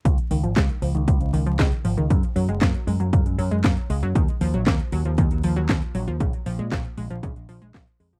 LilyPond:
<<
  \new Staff \with { instrumentName = "Synth arpeggio sound" } { \clef bass \time 4/4 \key des \mixolydian \tempo 4 = 117 des16 r16 ees16 f16 aes16 r16 f16 ees16 des16 r16 ees16 f16 aes16 r16 f16 ees16 | des16 r16 ges16 aes16 bes16 r16 aes16 ges16 des16 r16 ges16 aes16 bes16 r16 aes16 ges16 | ees16 r16 f16 ges16 bes16 r16 ges16 f16 ees16 r16 f16 ges16 bes16 r16 ges16 f16 | des16 r16 f16 aes16 bes16 r16 aes16 f16 des16 r16 f16 aes16 bes16 r16 aes16 f16 | }
  \new Staff \with { instrumentName = "Picked electric bass" } { \clef bass \time 4/4 \key des \mixolydian des,16 r16 des,16 aes,,16 des,16 r16 des,16 des,16 des,16 des,16 des,16 des,16 des,16 r16 aes,,16 des,16 | ges,16 r16 ges,16 ges,,16 ges,16 r16 ges,16 ges,16 ges,16 ges,16 ges,16 ges,16 ges,16 r16 des,16 ges,16 | ees,16 r16 ees,16 bes,,16 ees,16 r16 ees,16 ees,16 ees,16 ees,16 ees,16 ees,16 ees,16 r16 bes,,16 ees,16 | bes,,16 r16 bes,,16 bes,16 bes,,16 r16 bes,,16 bes,,16 bes,,16 bes,,16 bes,,16 bes,,16 bes,,16 r16 f,16 r16 | }
  \new DrumStaff \with { instrumentName = "Drums" } \drummode { \time 4/4 <hh bd>16 hh16 hho16 hh16 <hc hh bd sn>16 hh16 hho16 hh16 <hh bd>16 hh16 hho16 hh16 <hc hh bd sn>16 hh16 hho16 hh16 | <hh bd>16 hh16 hho16 hh16 <hc hh bd sn>16 hh16 hho16 hh16 <hh bd>16 hh16 hho16 hh16 <hc hh bd sn>16 hh16 hho16 hh16 | <hh bd>16 hh16 hho16 hh16 <hc hh bd sn>16 hh16 hho16 hh16 <hh bd>16 hh16 hho8 <hc hh bd sn>16 hh16 hho16 hh16 | <hh bd>16 hh16 hho16 hh16 <hc hh bd sn>16 hh16 hho16 hh16 <hh bd>16 hh16 hho16 hh16 <hc hh bd sn>16 hh16 hho8 | }
>>